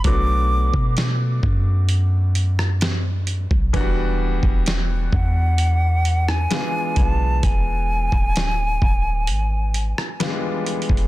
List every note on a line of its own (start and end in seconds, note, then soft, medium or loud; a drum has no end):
0.04 0.71 B1 loud
0.04 3.70 F#3 medium
0.04 3.70 A3 medium
0.04 3.70 B3 medium
0.04 3.71 D4 medium
0.04 3.71 F#4 medium
0.04 0.93 D6 loud
0.04 kick loud
0.04 closed hi-hat medium
0.74 1.40 B2 loud
0.74 kick medium
0.97 snare loud
0.97 closed hi-hat medium
1.43 3.47 F#2 loud
1.43 kick medium
1.89 closed hi-hat medium
2.35 closed hi-hat medium
2.59 cross-stick medium
2.81 snare loud
2.81 closed hi-hat medium
3.27 closed hi-hat medium
3.51 3.73 B1 loud
3.51 kick loud
3.73 4.40 E1 loud
3.73 6.46 E3 medium
3.73 3.80 F#3 medium
3.73 6.47 B3 medium
3.73 6.48 D4 medium
3.73 6.48 F#4 loud
3.73 kick loud
3.73 closed hi-hat medium
3.81 6.50 G3 medium
4.43 5.10 E1 loud
4.43 kick medium
4.66 snare loud
4.66 closed hi-hat medium
5.12 6.47 E2 loud
5.12 6.31 F#5 loud
5.12 kick loud
5.58 closed hi-hat medium
6.05 closed hi-hat medium
6.28 7.00 G#5 loud
6.28 cross-stick medium
6.50 10.16 E3 medium
6.50 10.16 G#3 medium
6.50 10.17 B3 medium
6.50 10.17 D4 medium
6.50 10.18 F4 medium
6.50 snare loud
6.50 closed hi-hat medium
6.96 7.41 B1 loud
6.96 7.46 A5 loud
6.96 kick medium
6.96 closed hi-hat medium
7.43 8.10 E1 loud
7.43 10.21 G#5 loud
7.43 kick loud
7.43 closed hi-hat medium
8.12 8.79 D1 loud
8.12 kick medium
8.36 snare loud
8.36 closed hi-hat medium
8.82 9.30 D1 loud
8.82 kick medium
9.27 9.94 G#1 loud
9.27 closed hi-hat medium
9.74 closed hi-hat medium
9.98 cross-stick medium
10.20 11.08 E3 medium
10.20 10.27 G3 medium
10.20 11.08 B3 medium
10.20 11.08 D4 medium
10.20 11.08 F4 medium
10.20 snare loud
10.20 closed hi-hat medium
10.27 11.08 G#3 medium
10.66 closed hi-hat medium
10.82 closed hi-hat soft
10.89 11.08 E1 loud
10.89 kick medium
10.97 closed hi-hat soft